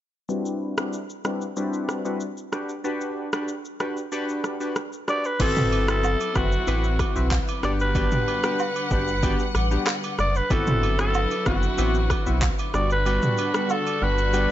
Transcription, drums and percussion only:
0.29 shaker medium
0.46 shaker medium
0.78 cross-stick loud
0.78 shaker medium
0.93 shaker medium
1.10 shaker medium
1.25 cross-stick medium
1.25 shaker medium
1.42 shaker soft
1.57 shaker medium
1.73 shaker soft
1.89 cross-stick medium
1.89 shaker soft
2.05 shaker medium
2.20 shaker medium
2.37 shaker soft
2.53 cross-stick medium
2.53 shaker medium
2.69 shaker soft
2.85 shaker medium
3.01 shaker medium
3.33 cross-stick loud
3.33 shaker soft
3.48 shaker medium
3.65 shaker medium
3.80 cross-stick medium
3.80 shaker medium
3.97 shaker soft
4.12 shaker medium
4.29 shaker soft
4.44 cross-stick medium
4.44 shaker soft
4.61 shaker medium
4.76 cross-stick medium
4.76 shaker medium
4.93 shaker soft
5.08 cross-stick medium
5.08 shaker medium
5.24 shaker soft
5.40 kick loud
5.40 crash loud
5.40 high agogo medium
5.40 shaker medium
5.56 mid tom medium
5.56 shaker medium
5.72 high agogo medium
5.88 cross-stick loud
5.88 shaker medium
6.04 low woodblock medium
6.04 shaker medium
6.20 high agogo medium
6.20 shaker medium
6.35 kick loud
6.35 cross-stick loud
6.35 shaker medium
6.52 shaker medium
6.67 high agogo medium
6.67 shaker medium
6.84 shaker soft
6.99 kick medium
6.99 cross-stick medium
6.99 high agogo medium
6.99 shaker medium
7.16 shaker medium
7.31 kick loud
7.31 clap loud
7.31 low woodblock medium
7.31 shaker medium
7.48 high agogo medium
7.48 shaker soft
7.63 cross-stick medium
7.63 shaker medium
7.80 shaker soft
7.95 kick loud
7.95 high agogo medium
7.95 shaker medium
8.12 mid tom medium
8.12 shaker medium
8.28 high agogo medium
8.43 cross-stick loud
8.43 shaker medium
8.59 low woodblock medium
8.59 shaker medium
8.76 high agogo medium
8.76 shaker medium
8.91 kick loud
8.91 shaker medium
9.08 shaker medium
9.23 kick loud
9.23 high agogo medium
9.23 shaker medium
9.39 shaker soft
9.55 cross-stick medium
9.55 high agogo medium
9.55 shaker medium
9.71 shaker medium
9.87 cross-stick loud
9.87 clap loud
9.87 low woodblock medium
9.87 shaker medium
10.03 high agogo medium
10.03 shaker medium
10.19 cross-stick medium
10.19 shaker medium
10.35 shaker soft
10.50 kick loud
10.50 high agogo medium
10.50 shaker medium
10.67 mid tom medium
10.67 shaker medium
10.83 high agogo medium
10.99 cross-stick loud
10.99 shaker medium
11.14 low woodblock medium
11.14 shaker medium
11.31 high agogo medium
11.31 shaker medium
11.46 kick loud
11.46 cross-stick loud
11.46 shaker medium
11.63 shaker medium
11.78 high agogo medium
11.78 shaker medium
11.95 shaker soft
12.10 kick medium
12.10 cross-stick medium
12.10 high agogo medium
12.10 shaker medium
12.27 shaker medium
12.42 kick loud
12.42 clap loud
12.42 low woodblock medium
12.42 shaker medium
12.59 high agogo medium
12.59 shaker soft
12.74 cross-stick medium
12.74 shaker medium
12.90 shaker soft
13.06 high agogo medium
13.06 shaker medium
13.22 mid tom loud
13.22 shaker medium
13.38 high agogo medium
13.38 shaker medium
13.54 cross-stick loud
13.54 shaker medium
13.70 low woodblock medium
13.70 shaker medium
13.86 high agogo medium
13.86 shaker medium
14.18 shaker medium
14.33 high agogo medium
14.33 shaker medium

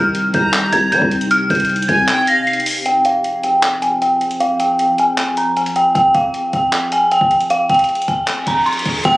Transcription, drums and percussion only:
0.15 closed hi-hat medium
0.34 kick loud
0.34 closed hi-hat medium
0.53 clap loud
0.53 closed hi-hat medium
0.73 closed hi-hat medium
0.92 closed hi-hat medium
1.02 kick medium
1.11 closed hi-hat medium
1.21 closed hi-hat medium
1.31 closed hi-hat medium
1.50 kick medium
1.50 closed hi-hat medium
1.55 closed hi-hat medium
1.60 closed hi-hat medium
1.65 closed hi-hat medium
1.70 closed hi-hat soft
1.76 closed hi-hat medium
1.82 closed hi-hat medium
1.89 kick loud
1.89 closed hi-hat medium
2.08 clap loud
2.08 closed hi-hat medium
2.27 closed hi-hat medium
2.47 closed hi-hat soft
2.53 closed hi-hat medium
2.60 closed hi-hat medium
2.66 open hi-hat medium
2.86 closed hi-hat medium
3.05 closed hi-hat medium
3.24 closed hi-hat medium
3.43 closed hi-hat medium
3.63 clap loud
3.63 closed hi-hat medium
3.82 closed hi-hat medium
4.02 closed hi-hat medium
4.21 closed hi-hat medium
4.31 closed hi-hat medium
4.40 closed hi-hat medium
4.60 closed hi-hat medium
4.79 closed hi-hat medium
4.98 closed hi-hat medium
5.18 clap loud
5.18 closed hi-hat medium
5.37 closed hi-hat medium
5.57 closed hi-hat medium
5.66 closed hi-hat medium
5.76 closed hi-hat medium
5.95 kick loud
5.95 closed hi-hat medium
6.15 kick medium
6.15 closed hi-hat medium
6.34 closed hi-hat medium
6.53 kick medium
6.53 closed hi-hat medium
6.73 clap loud
6.73 closed hi-hat medium
6.92 closed hi-hat medium
7.12 closed hi-hat medium
7.21 kick medium
7.31 closed hi-hat medium
7.41 closed hi-hat medium
7.50 closed hi-hat medium
7.69 kick medium
7.69 closed hi-hat medium
7.74 closed hi-hat medium
7.79 closed hi-hat medium
7.84 closed hi-hat medium
7.89 closed hi-hat soft
7.95 closed hi-hat medium
8.02 closed hi-hat medium
8.08 kick medium
8.08 closed hi-hat medium
8.28 clap loud
8.28 closed hi-hat medium
8.47 kick medium
8.47 closed hi-hat medium
8.66 closed hi-hat soft
8.73 closed hi-hat medium
8.79 closed hi-hat medium
8.86 kick loud
8.86 closed hi-hat medium
9.05 kick loud
9.05 crash medium

